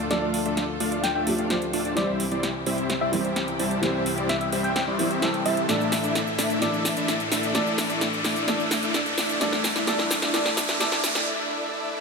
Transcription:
Already playing: D2 D3 F3 A3 D4 F4 A4, riser
0.10 F3 A3 D4 F4 A4 D5 F5, snare, closed hi-hat
0.22 D5
0.34 open hi-hat
0.45 A3 D4 F4 D5 E5, closed hi-hat
0.57 snare, closed hi-hat
0.80 A3 D4 F4 D5 F5, open hi-hat
0.92 closed hi-hat
1.03 G5, snare, closed hi-hat
1.15 A3 D4 F4 D5 E5 G5
1.26 F3 A3 D4 G4, open hi-hat
1.38 A3 D4 F4 D5 F5, closed hi-hat
1.50 F3 A3 D4 C5, snare, closed hi-hat
1.62 closed hi-hat
1.73 A3 D4 F4 D5 A5, open hi-hat
1.85 closed hi-hat
1.95 C2 C3 E3 G3 C4 E4 G4 C5 D5 E5, snare, closed hi-hat
2.20 open hi-hat
2.32 G3 C4 E4 C5 D5, closed hi-hat
2.43 snare, closed hi-hat
2.66 G3 C4 E4 C5 E5, open hi-hat
2.78 closed hi-hat
2.90 snare, closed hi-hat
3.01 G3 C4 E4 C5 D5 E5
3.12 E3 G3 C4 G4, open hi-hat
3.25 G3 C4 E4 C5 E5, closed hi-hat
3.36 snare, closed hi-hat
3.48 closed hi-hat
3.59 G3 C4 E4 C5 A5, open hi-hat
3.71 closed hi-hat
3.81 E3 G3 C4 E4 G4 C5 E5, snare, closed hi-hat
4.06 open hi-hat
4.18 G3 C4 E4 C5 D5, closed hi-hat
4.29 E5, snare, closed hi-hat
4.41 E5, closed hi-hat
4.52 G3 C4 E4 C5 E5, open hi-hat
4.64 G5, closed hi-hat
4.76 G5, snare, closed hi-hat
4.87 G3 C4 E4 C5 D5
4.98 E3 G3 C4 E4, open hi-hat
5.11 G3 C4 E4 C5 E5, closed hi-hat
5.22 E3 G3 C4 A4, snare, closed hi-hat
5.34 closed hi-hat
5.45 G3 C4 E4 C5 E5 A5, open hi-hat
5.57 closed hi-hat
5.68 A2 E3 A3 D4 E4 A4 D5 E5, snare, closed hi-hat, shaker
5.81 shaker
5.92 snare, open hi-hat, shaker
6.04 A3 D4 E4 D5 E5, closed hi-hat, shaker
6.15 snare, closed hi-hat, shaker
6.27 shaker
6.39 A3 D4 E4 D5 E5, snare, open hi-hat, shaker
6.50 closed hi-hat, shaker
6.61 A2 E3 A3 D4 E4 A4 D5 E5, snare, closed hi-hat, shaker
6.74 shaker
6.85 snare, open hi-hat, shaker
6.97 A3 D4 E4 D5 E5, closed hi-hat, shaker
7.08 snare, closed hi-hat, shaker
7.20 closed hi-hat, shaker
7.32 A3 D4 E4 D5 E5, snare, open hi-hat, shaker
7.43 closed hi-hat, shaker
7.54 A2 E3 A3 D4 E4 A4 D5 E5, snare, closed hi-hat, shaker
7.67 shaker
7.78 snare, open hi-hat, shaker
7.90 A3 D4 E4 D5 E5, closed hi-hat, shaker
8.01 snare, closed hi-hat, shaker
8.13 shaker
8.25 A3 D4 E4 D5 E5, snare, open hi-hat, shaker
8.36 closed hi-hat, shaker
8.47 A2 E3 A3 D4 E4 A4 D5 E5, snare, closed hi-hat, shaker
8.60 shaker
8.71 snare, open hi-hat, shaker
8.83 A3 D4 E4 D5 E5, closed hi-hat, shaker
8.94 snare, closed hi-hat, shaker
9.06 closed hi-hat, shaker
9.18 A3 D4 E4 D5 E5, snare, open hi-hat, shaker
9.29 closed hi-hat, shaker
9.40 G2 A2 E3 G3 A3 D4 E4 A4 D5 E5, snare, closed hi-hat, shaker
9.53 snare, shaker
9.64 snare, open hi-hat, shaker
9.76 A3 D4 E4 D5 E5, snare, closed hi-hat, shaker
9.86 A2 E3 A3 D4 E4 A4 D5 E5, snare, closed hi-hat, shaker
9.99 snare, shaker
10.11 snare, open hi-hat, shaker
10.22 A3 D4 E4 D5 E5, snare, closed hi-hat, shaker
10.33 A2 E3 A3 D4 E4 A4 D5 E5, snare, closed hi-hat, shaker
10.46 snare, shaker
10.57 snare, open hi-hat, shaker
10.69 A3 D4 E4 D5 E5, snare, closed hi-hat, shaker
10.79 A2 E3 A3 D4 E4 A4 D5 E5, snare, closed hi-hat, shaker
10.92 snare, closed hi-hat, shaker
11.04 snare, open hi-hat, shaker
11.15 A3 D4 E4 D5 E5, snare, closed hi-hat, shaker
11.27 A3 D4 E4 D5 E5
11.50 A3 D4 E4 D5 E5
11.73 A3 D4 E4 D5 E5
11.97 A3 D4 E4 D5 E5

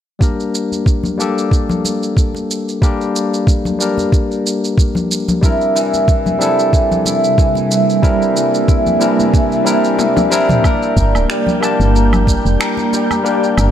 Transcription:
0.19 G3 A#3 D4 G4, kick, shaker
0.23 A#4
0.40 shaker
0.55 shaker
0.72 high conga, shaker
0.86 kick, shaker
1.03 high conga, low conga, shaker
1.18 G3 A#3 D4 G4 A4, shaker
1.38 shaker
1.51 kick, shaker
1.69 low conga, shaker
1.85 muted conga, shaker
2.03 shaker
2.17 kick, shaker
2.35 muted conga, shaker
2.51 shaker
2.69 shaker
2.82 G3 A#3 D4 G4 A#4, kick, shaker
3.01 shaker
3.16 shaker
3.34 shaker
3.47 kick, shaker
3.65 high conga, low conga, shaker
3.78 G3 A#3 D4 G4 A#4, shaker
3.98 muted conga, high conga, shaker
4.12 kick, shaker
4.32 shaker
4.46 shaker
4.64 shaker
4.78 kick, shaker
4.95 low conga, shaker
5.11 shaker
5.28 muted conga, low conga, shaker
5.41 C3 G3 C4 D4 E4, kick, shaker
5.45 A#4
5.59 G3, shaker
5.75 E3, shaker
5.94 high conga, shaker
6.08 E3, kick, shaker
6.26 high conga, low conga, shaker
6.38 G3 C4 D4 E4, shaker
6.42 A4
6.59 shaker
6.73 E3, kick, shaker
6.81 A#3
6.91 E4, low conga, shaker
7.06 E4, muted conga, shaker
7.24 shaker
7.38 E3, kick, shaker
7.55 muted conga, shaker
7.71 E3, shaker
7.78 D5
7.90 shaker
8.02 G3 C4 D4 E4 A#4, kick, shaker
8.22 shaker
8.36 E3, shaker
8.54 shaker
8.68 E4, kick, shaker
8.86 high conga, low conga, shaker
8.99 E3 G3 C4 D4 E4 A#4, shaker
9.19 muted conga, high conga, shaker
9.34 E3, kick, shaker
9.52 shaker
9.65 G3 C4 D4 E4 A#4, shaker
9.84 shaker
9.98 E3, high tom, shaker
10.17 high tom, low conga, shaker
10.30 G3 C4 D4 E4 A#4, shaker
10.49 mid tom, muted conga, low conga, shaker
10.63 G3 A#3 D4 G4 G5, kick, low woodblock, shaker
10.67 A#4
10.83 shaker
10.97 G1 A#4, kick, shaker
11.08 G4
11.14 D1, high conga, low woodblock, shaker
11.30 G3, finger snap, shaker
11.47 low conga, shaker
11.60 G3 A#3 D4 G4 A5, low woodblock, shaker
11.80 G1, shaker
11.91 D4
11.95 A#4, shaker
12.13 low conga, low woodblock, shaker
12.27 G3, kick, muted conga, shaker
12.45 F1, shaker
12.60 A#4, finger snap, low woodblock, shaker
12.77 muted conga, shaker
12.93 G3, muted conga, shaker
13.11 high conga, low woodblock, shaker
13.24 G3 A#3 D4 G4 A#4, shaker
13.44 shaker
13.58 G1 A#4, low woodblock, shaker

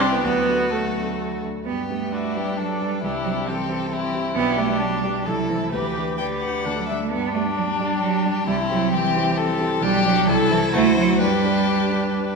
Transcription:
Already playing: C2 G3 G4
0.00 C4 E4 G4 C5
0.11 B3 B4
0.23 D2 F#3 B3 F#4 B4
0.48 D4 F#4 A4
0.71 F#3 A3 A4
0.96 D4 F#4 A4
1.44 D4 F#4 A4
1.65 G2 B3 G4
1.89 A3 D4 G4 B4
2.12 D4 E4 F#4
2.35 G3 D4 G4 B4
2.57 F#3 D4 A4
2.80 G3 D4 G4 B4
3.02 C2 G3 D4 E4 G4
3.24 F#3 C4 G4 C5
3.47 E3 C4 G4 A4
3.69 C4 G4 C5
3.91 C4 E4 G4
4.14 C4 G4 C5
4.35 B1 B3 D4 G4
4.57 G3 A3 G4 D5
4.80 F#3 D4
5.02 G3 G4 D5
5.24 C2 F#3 E4 A4
5.49 E3 A3 E4 C5
5.72 D2 E3 G4 B4
5.97 D4 G4 B4
6.18 D3 G4 B4 G5
6.41 D4 G4 B4 F#5
6.65 D2 D4 A4
6.78 F#3
6.89 G3 D4 A4 D5 E5
7.01 A3
7.11 G2 B3 D4 G4
7.34 A3 D4 G4 D5
7.57 F#3
7.78 G3 D4 G4 D5
8.01 F#3
8.24 G3 D4 G4 D5
8.47 C2 G3 C4 E4
8.70 F#3 E4 G4 C5
8.93 E3 G4
9.15 E4 G4 C5
9.37 A4
9.60 E4 G4 C5
9.81 B1 G3 D4 G4
10.04 F#3 D4 G4 D5
10.27 C2 E4 A4
10.50 E3 E4 A4 C5
10.74 D2 A3 F#4 C5
10.97 F#3 E4 F#4 C5
11.20 G2 G3 D4 G4 B4
11.44 D4 G4 B4
11.90 D4 G4 B4

